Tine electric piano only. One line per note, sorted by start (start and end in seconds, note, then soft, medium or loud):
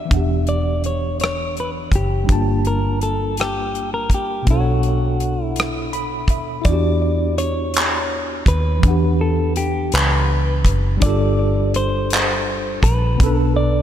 0.05 2.22 E3 medium
0.05 2.24 B3 medium
0.11 2.25 D4 medium
0.11 2.27 F#5 soft
0.17 2.28 G4 medium
2.24 4.41 G3 medium
2.24 4.42 D4 medium
2.29 4.43 F4 soft
2.29 4.45 A5 medium
2.35 4.46 A#3 medium
4.42 6.59 B2 medium
4.42 6.60 B3 medium
4.48 6.62 D4 medium
4.48 6.63 A4 medium
4.53 4.57 C5 soft
4.60 6.68 C#5 medium
5.93 6.27 B5 medium
6.30 6.64 E5 medium
6.62 8.79 B3 medium
6.62 8.78 E4 medium
6.68 8.81 D4 medium
6.68 8.82 F#4 medium
6.73 8.83 G4 medium
8.79 10.96 E3 medium
8.79 10.97 B3 medium
8.85 10.98 D4 medium
8.85 11.00 F#5 medium
8.90 11.01 G4 medium
10.97 13.14 G3 medium
10.97 13.15 D4 medium
11.03 13.17 F4 medium
11.03 13.18 A4 medium
11.09 13.20 G4 medium
13.15 13.82 B2 medium
13.15 13.82 B3 medium
13.21 13.27 C#4 soft
13.21 13.82 A4 medium
13.26 13.82 D4 medium
13.26 13.82 B4 medium